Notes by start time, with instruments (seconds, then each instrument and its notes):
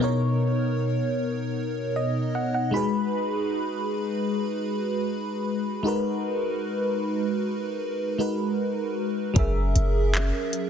0.00 fm electric piano B2 B3 D#4 A#4 C#5
1.96 fm electric piano D#5
2.35 fm electric piano F#5
2.54 fm electric piano F#5
2.71 fm electric piano G#3 D#4 F#4 G#4 B5
2.76 fm electric piano B4
5.83 fm electric piano G#3 D#4 F#4 A#4
5.88 fm electric piano B4
8.18 fm electric piano G#3 D#4 F#4 A#4 B4
9.34 808-style bass F#1, fm electric piano F#3 C#4 G#4, kick, closed hi-hat
9.38 fm electric piano A#4 E5
9.75 808-style bass F#1, closed hi-hat
10.15 clap, closed hi-hat
10.53 closed hi-hat